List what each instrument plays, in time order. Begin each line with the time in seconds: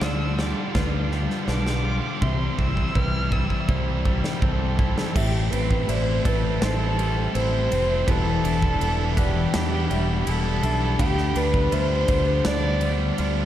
Already playing: clean electric guitar D3 D4, string section F4 D5 G5
0.01 fingered electric bass D2, distorted electric guitar D3, clean electric guitar F4, felt piano D5, violin E6, snare
0.06 distorted electric guitar F3, overdriven electric guitar G3
0.13 distorted electric guitar D3 F3, overdriven electric guitar G3
0.20 distorted electric guitar D3 F3, overdriven electric guitar G3
0.27 distorted electric guitar D3 F3, overdriven electric guitar G3
0.36 distorted electric guitar D3 F3, overdriven electric guitar G3, clean electric guitar G3, snare
0.40 distorted electric guitar D3, overdriven electric guitar G3, violin D6
0.45 distorted electric guitar F3
0.52 distorted electric guitar D3 F3, overdriven electric guitar G3
0.60 distorted electric guitar D3 F3, overdriven electric guitar G3
0.68 distorted electric guitar D3 F3, overdriven electric guitar G3
0.75 fingered electric bass D2, distorted electric guitar D3 F3, overdriven electric guitar G3, clean electric guitar F4, felt piano B4, kick, snare
0.82 distorted electric guitar D3 F3, overdriven electric guitar G3
0.90 distorted electric guitar D3 F3, overdriven electric guitar G3
0.97 distorted electric guitar D3 F3, overdriven electric guitar G3
1.06 distorted electric guitar D3 F3, overdriven electric guitar G3
1.12 distorted electric guitar D3 F3, clean electric guitar G3, overdriven electric guitar G3, snare
1.22 distorted electric guitar D3 F3, overdriven electric guitar G3
1.29 distorted electric guitar D3 F3, overdriven electric guitar G3, snare
1.37 distorted electric guitar D3 F3, overdriven electric guitar G3
1.44 fingered electric bass B1, distorted electric guitar D3 F3, overdriven electric guitar G3, snare
1.48 clean electric guitar D4, felt piano B4, violin D6
1.53 distorted electric guitar D3 F3, overdriven electric guitar G3
1.60 distorted electric guitar D3 F3, overdriven electric guitar G3
1.67 distorted electric guitar D3 F3, overdriven electric guitar G3, snare
1.76 distorted electric guitar D3 F3, overdriven electric guitar G3
1.83 distorted electric guitar D3 F3, overdriven electric guitar G3, clean electric guitar F4
1.90 distorted electric guitar D3 F3, overdriven electric guitar G3
1.99 distorted electric guitar D3 F3, overdriven electric guitar G3
2.07 distorted electric guitar D3 F3, overdriven electric guitar G3
2.14 distorted electric guitar D3 F3, overdriven electric guitar G3
2.21 fingered electric bass C2, distorted electric guitar C3 G3, clean electric guitar C3, overdriven electric guitar E3, string section C4 E4, felt piano E5, violin C6, kick
2.29 distorted electric guitar C3 G3, overdriven electric guitar E3
2.37 distorted electric guitar C3 G3, overdriven electric guitar E3
2.44 distorted electric guitar C3 G3, overdriven electric guitar E3
2.51 distorted electric guitar C3 G3, overdriven electric guitar E3
2.58 fingered electric bass C2, distorted electric guitar C3 G3, overdriven electric guitar E3, clean electric guitar C4, violin E6, kick
2.67 distorted electric guitar C3 G3, overdriven electric guitar E3
2.75 distorted electric guitar C3 G3, overdriven electric guitar E3, kick
2.83 distorted electric guitar C3 G3, overdriven electric guitar E3
2.91 distorted electric guitar C3 G3, overdriven electric guitar E3
2.95 fingered electric bass C2, distorted electric guitar C3 G3, overdriven electric guitar E3, clean electric guitar E4, felt piano B4, violin F6, kick
3.06 distorted electric guitar C3 G3, overdriven electric guitar E3
3.12 distorted electric guitar C3 G3, overdriven electric guitar E3
3.21 distorted electric guitar C3 G3, overdriven electric guitar E3
3.29 distorted electric guitar C3 G3, overdriven electric guitar E3, clean electric guitar G3, violin E6, kick
3.36 distorted electric guitar C3 G3, overdriven electric guitar E3
3.44 distorted electric guitar C3 G3, overdriven electric guitar E3
3.50 distorted electric guitar C3, overdriven electric guitar E3, kick
3.54 distorted electric guitar G3
3.60 distorted electric guitar C3 G3, overdriven electric guitar E3
3.68 fingered electric bass C2, distorted electric guitar C3 G3, overdriven electric guitar E3, clean electric guitar E4, felt piano C5, kick
3.76 distorted electric guitar C3 G3, overdriven electric guitar E3
3.83 distorted electric guitar C3 G3, overdriven electric guitar E3
3.91 distorted electric guitar C3 G3, overdriven electric guitar E3
3.99 distorted electric guitar C3 G3, overdriven electric guitar E3
4.05 distorted electric guitar C3 G3, overdriven electric guitar E3, clean electric guitar G3, kick
4.13 distorted electric guitar C3 G3, overdriven electric guitar E3
4.21 distorted electric guitar C3 G3, overdriven electric guitar E3, snare
4.30 distorted electric guitar C3 G3, overdriven electric guitar E3
4.37 distorted electric guitar C3 G3, overdriven electric guitar E3
4.42 fingered electric bass C2, distorted electric guitar C3 G3, overdriven electric guitar E3, clean electric guitar C4, violin A4, felt piano C5, kick
4.53 distorted electric guitar C3 G3, overdriven electric guitar E3
4.60 distorted electric guitar C3 G3, overdriven electric guitar E3
4.68 distorted electric guitar C3 G3, overdriven electric guitar E3
4.76 distorted electric guitar C3 G3, overdriven electric guitar E3, clean electric guitar E4, kick
4.83 distorted electric guitar C3 G3, overdriven electric guitar E3
4.91 distorted electric guitar C3 G3, overdriven electric guitar E3
4.98 distorted electric guitar C3 G3, overdriven electric guitar E3, snare
5.05 distorted electric guitar C3 G3, overdriven electric guitar E3
5.14 fingered electric bass A1, distorted electric guitar A2 E3 A3 C4 E4, clean electric guitar A2, string section C4 G4 E5 A5, violin G4, felt piano E5, kick, crash
5.34 muted overdriven electric guitar stroke
5.50 fingered electric bass A1, distorted electric guitar E3 A3 C4 E4, clean electric guitar C4, violin B4, ride
5.70 overdriven electric guitar A3 C4 E4, kick
5.88 fingered electric bass A1, distorted electric guitar A2 E3 A3 C4 E4, clean electric guitar E4, violin C5, felt piano D5, ride
6.07 distorted electric guitar A3 C4 E4
6.23 fingered electric bass A1, distorted electric guitar E3 A3 C4 E4, clean electric guitar A4, violin B4, kick, ride
6.42 distorted electric guitar A3 C4 E4, muted overdriven electric guitar stroke
6.61 fingered electric bass A1, clean electric guitar C4, violin A4, felt piano C5, snare, ride
6.78 distorted electric guitar A3 C4 E4
6.97 distorted electric guitar E3 A3 C4 E4, clean electric guitar G3, ride
7.33 fingered electric bass A1, distorted electric guitar A2 E3 A3 C4 E4, clean electric guitar E4, felt piano C5, violin C5, ride
7.52 distorted electric guitar A3 C4 E4
7.70 fingered electric bass F1, overdriven electric guitar E3 A3 C4 E4, clean electric guitar C4, muted distorted electric guitar stroke, ride
7.88 distorted electric guitar A3 C4 E4
8.05 fingered electric bass E1, distorted electric guitar E3 G3 B3 E4, clean electric guitar E3, violin A4, felt piano B4, string section D5 B5, kick, ride
8.27 muted overdriven electric guitar stroke
8.42 fingered electric bass E1, distorted electric guitar E3 G3 B3 E4, clean electric guitar D4, felt piano B4, ride
8.62 overdriven electric guitar G3 B3 E4, kick
8.79 fingered electric bass E1, distorted electric guitar E3 G3 B3 E4, clean electric guitar E4, ride
8.96 distorted electric guitar G3 B3 E4
9.15 distorted electric guitar E3 G3 B3 E4, clean electric guitar B4, felt piano D5, kick, ride
9.19 violin G4
9.33 distorted electric guitar G3 B3 E4, muted overdriven electric guitar stroke
9.53 fingered electric bass E2, clean electric guitar D4, snare, ride
9.69 distorted electric guitar G3 B3 E4
9.88 fingered electric bass E1, distorted electric guitar E3 G3 B3 E4, clean electric guitar G3, felt piano E5, ride
10.25 fingered electric bass E1, distorted electric guitar E3 G3 B3 E4, clean electric guitar E4, violin A4, ride
10.44 distorted electric guitar G3 B3 E4
10.62 fingered electric bass B1, overdriven electric guitar E3 G3 B3 E4, clean electric guitar D4, felt piano E5, muted distorted electric guitar stroke, ride
10.81 distorted electric guitar G3 B3 E4
10.98 fingered electric bass D2, distorted electric guitar D3 G3 B3 D4, clean electric guitar D3, overdriven electric guitar F4, string section F4 D5, violin G4, felt piano F5, kick, ride
11.17 muted overdriven electric guitar stroke, snare
11.35 fingered electric bass D2, distorted electric guitar D3 G3 B3 D4, clean electric guitar D4, violin B4, ride
11.53 overdriven electric guitar G3 B3 F4, kick
11.71 fingered electric bass D2, distorted electric guitar D3 G3 B3 D4, clean electric guitar F4, overdriven electric guitar F4, violin C5, felt piano E5, ride
11.89 distorted electric guitar G3 B3 D4
12.07 fingered electric bass D2, distorted electric guitar D3 G3 B3 D4, overdriven electric guitar F4, kick, ride
12.25 distorted electric guitar G3 B3 D4, muted overdriven electric guitar stroke
12.45 fingered electric bass D2, clean electric guitar D4, felt piano D5, violin D5, snare, ride
12.60 distorted electric guitar G3 B3 D4, overdriven electric guitar F4
12.79 distorted electric guitar D3 G3 B3 D4, clean electric guitar G3, ride
13.17 fingered electric bass D2, distorted electric guitar D3 G3 B3 D4, clean electric guitar F4, overdriven electric guitar F4, felt piano D5, ride
13.36 distorted electric guitar G3 B3 D4